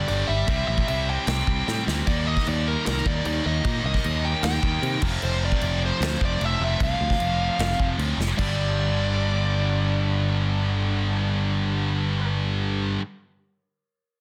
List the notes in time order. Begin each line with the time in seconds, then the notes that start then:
Already playing: G2 D3 G3 B3 D4
0.08 G1 G2 D3 G3 D5, crash
0.28 G1 E5
0.47 C2 C3 G3 C4 E4, kick, crash
0.68 A1 E5
0.78 kick
0.88 C2 E5, crash
1.09 G5
1.27 C2 G5, snare, crash
1.47 C2 C3 G3 C4, kick
1.66 A2 C3 G3 C4, snare
1.87 D2 C3 G3 C4, snare
2.06 D#2 D#3 G3 A#3 D#4 D5, kick, crash
2.27 D#5
2.37 kick, snare
2.46 D#2 D5, crash
2.68 A#4
2.86 C2 A#4, snare, crash
3.04 D#2 D#3 A#3 D#4 D5, kick
3.24 D#2 D#3 A#3 D#4 D5, crash
3.44 D#2 D#3 A#3 D#4 D#5
3.63 A#2 D#3 G3 A#3 D#4, kick, crash
3.84 C2 D#5
3.94 kick, snare
4.04 D#2, crash
4.25 G5
4.43 D#2 G5, snare, crash
4.62 D#2 D#3 A#3 D#4, kick
4.80 C3 D#3 A#3 D#4, crash
5.01 F1 F2 C3 F3 A3 C4, kick, crash
5.22 F1 C5, crash
5.45 D5
5.52 kick
5.61 F1, crash
5.86 C5
6.00 D2 F2 C3 F3, snare, crash
6.20 F1 F2 C3 F3, kick
6.25 D5
6.40 F1 F2 C3 F3, crash
6.45 E5
6.59 F1 F2 C3 F3 A3 C4
6.64 E5
6.80 C2 F5, kick, crash
7.01 D2
7.10 kick, snare
7.20 F1, crash
7.58 F1 F2 C3 F3, snare, crash
7.77 F1 F2 C3 F3, kick
7.98 D2 F2 C3 F3, crash
8.18 F1, snare
8.36 G1 G2 D3 D5, kick, crash
8.40 G3 B3 D4 G4